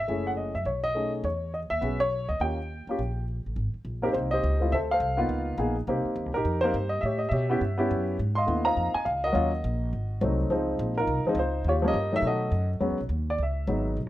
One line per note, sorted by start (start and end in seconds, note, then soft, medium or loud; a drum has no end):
0.00 0.27 E5 medium
0.08 0.52 F#1 medium
0.08 0.51 A3 medium
0.08 0.52 C#4 soft
0.08 0.52 E4 soft
0.08 0.52 G#4 medium
0.27 0.32 F#5 medium
0.37 0.54 D#5 medium
0.55 0.65 F#2 medium
0.55 0.65 E5 medium
0.65 1.21 B1 medium
0.65 0.85 C#5 medium
0.84 1.11 D#5 loud
0.95 1.24 A3 soft
0.95 1.24 C#4 soft
0.95 1.25 D#4 soft
0.95 1.25 G#4 medium
1.24 1.68 E2 medium
1.24 1.51 C#5 medium
1.54 1.59 D#5 medium
1.70 1.81 D#2 medium
1.70 1.98 E5 loud
1.81 2.26 B1 medium
1.81 1.98 B3 medium
1.81 1.98 C#4 soft
1.81 1.99 F#4 soft
1.81 1.99 G#4 medium
2.00 2.27 C#5 loud
2.29 2.39 D2 medium
2.29 2.40 D#5 medium
2.40 2.84 D#2 medium
2.40 2.56 A#3 medium
2.40 2.57 C#4 soft
2.40 2.57 F4 soft
2.40 2.57 G4 medium
2.40 3.24 G5 medium
2.87 2.98 D2 medium
2.87 2.98 A#3 medium
2.87 2.98 C#4 medium
2.87 2.99 F4 medium
2.87 2.99 G4 medium
2.99 3.42 A#1 medium
3.46 3.56 A1 medium
3.56 3.73 G#1 medium
3.74 muted upright bass stroke soft
3.85 4.13 A#1 medium
4.02 4.40 A#3 medium
4.02 4.41 C4 medium
4.02 4.14 D#4 medium
4.02 4.14 G4 medium
4.02 4.08 A#4 medium
4.13 4.42 C2 medium
4.13 4.69 D#4 medium
4.13 4.32 G4 soft
4.13 4.18 C5 medium
4.31 4.70 G4 medium
4.31 4.70 C5 medium
4.31 4.73 D#5 loud
4.44 4.71 C#2 medium
4.60 4.71 A3 medium
4.60 4.71 C4 medium
4.60 4.71 E4 soft
4.60 4.71 F4 medium
4.72 5.00 D2 medium
4.72 4.91 A4 medium
4.72 4.92 C5 medium
4.72 4.77 E5 medium
4.91 5.29 A4 medium
4.91 5.29 C5 medium
4.91 5.73 F5 loud
5.00 5.28 C2 medium
5.17 5.56 A#3 medium
5.17 5.56 B3 medium
5.17 5.56 D#4 medium
5.17 5.56 F4 medium
5.29 5.57 C#2 medium
5.58 5.86 A#1 medium
5.58 5.75 A#3 medium
5.58 5.75 B3 medium
5.58 5.75 D#4 medium
5.58 5.75 G#4 medium
5.87 6.04 C2 medium
5.87 6.31 A#3 medium
5.87 6.31 C4 medium
5.87 6.31 D#4 medium
5.87 6.32 G4 medium
6.05 muted upright bass stroke soft
6.16 6.26 D#2 medium
6.26 6.35 C2 medium
6.34 6.44 A#1 medium
6.34 6.63 D#4 medium
6.34 6.64 G4 medium
6.34 6.64 A#4 medium
6.45 6.73 F2 medium
6.61 6.74 A#3 medium
6.61 6.73 C4 medium
6.61 6.74 D#4 medium
6.61 6.89 C5 loud
6.65 7.01 G4 medium
6.65 6.74 A#4 medium
6.74 7.02 G2 medium
6.89 7.02 D#5 loud
7.01 7.31 A2 medium
7.01 7.19 E5 medium
7.05 7.31 G4 medium
7.05 7.32 C#5 medium
7.18 7.31 D#5 medium
7.29 7.60 B2 medium
7.29 8.02 E5 medium
7.33 7.49 G4 medium
7.33 8.04 C#5 medium
7.50 7.60 B3 medium
7.50 7.60 C#4 medium
7.50 7.60 E4 medium
7.50 7.60 G4 medium
7.61 7.89 G2 medium
7.78 8.16 B3 medium
7.78 8.16 C#4 medium
7.78 8.17 E4 medium
7.78 8.17 G4 medium
7.91 8.18 F#2 medium
8.19 8.47 G#2 medium
8.35 8.65 D#5 medium
8.35 8.65 F5 medium
8.35 8.66 C6 medium
8.46 8.76 D#2 medium
8.46 8.63 A3 soft
8.46 8.63 B3 medium
8.46 8.64 D4 soft
8.46 8.64 E4 medium
8.65 8.91 A#3 medium
8.65 8.91 C4 medium
8.65 8.91 D#4 soft
8.65 8.92 F4 medium
8.65 9.20 D#5 medium
8.65 9.04 F5 medium
8.65 8.95 A#5 loud
8.77 8.93 F2 medium
8.94 9.06 G#5 medium
8.94 muted upright bass stroke soft
9.05 9.34 C#2 medium
9.05 9.24 F5 medium
9.24 10.36 F#4 medium
9.24 9.89 A#4 medium
9.24 10.35 D#5 loud
9.33 9.63 D#2 medium
9.33 9.50 F#3 medium
9.33 9.50 A#3 medium
9.33 9.50 C#4 medium
9.33 9.51 F4 medium
9.64 9.92 A#1 medium
9.93 10.21 G#1 medium
10.21 10.49 C2 medium
10.21 10.50 F#3 medium
10.21 10.51 A3 medium
10.21 10.50 C4 medium
10.21 10.50 D#4 medium
10.50 10.78 C#2 medium
10.50 10.93 F3 medium
10.50 10.94 G#3 medium
10.50 10.94 C4 medium
10.50 10.94 D#4 medium
10.79 11.07 A#1 medium
10.98 11.27 D#4 medium
10.98 11.37 F4 medium
10.98 11.24 A#4 medium
11.07 11.24 C2 medium
11.25 11.36 F3 medium
11.25 11.37 G#3 medium
11.25 11.37 C4 medium
11.25 11.37 D#4 medium
11.25 muted upright bass stroke soft
11.35 11.64 C#2 medium
11.39 11.65 D#4 medium
11.39 11.65 F4 medium
11.39 11.68 C5 medium
11.64 11.93 D#2 medium
11.64 12.21 F4 medium
11.69 11.86 G4 medium
11.69 11.74 C#5 medium
11.82 11.93 F3 medium
11.82 11.93 G3 medium
11.82 11.94 A#3 medium
11.82 11.94 C#4 medium
11.87 12.23 G4 medium
11.87 12.23 A#4 medium
11.87 12.15 D#5 loud
11.94 12.22 G2 medium
12.12 12.50 D#3 medium
12.12 12.50 F#3 medium
12.12 12.50 A3 medium
12.12 12.51 D#4 medium
12.12 12.24 E5 loud
12.22 12.51 B2 medium
12.27 12.79 F#4 medium
12.27 12.79 A4 medium
12.27 12.69 D#5 medium
12.52 12.80 F#2 medium
12.80 12.91 E2 medium
12.80 12.97 F#3 medium
12.80 12.97 G#3 medium
12.80 12.97 B3 medium
12.80 12.98 C#4 medium
12.90 13.00 C#2 medium
13.00 13.08 B1 medium
13.09 13.38 D#2 medium
13.30 13.40 D5 medium
13.38 13.67 C#2 medium
13.43 13.84 E5 medium
13.67 13.96 G#1 medium
13.67 13.97 F#3 medium
13.67 13.97 G#3 medium
13.67 13.97 B3 soft
13.67 13.97 D#4 medium
13.97 14.06 B1 medium
14.06 14.09 A1 soft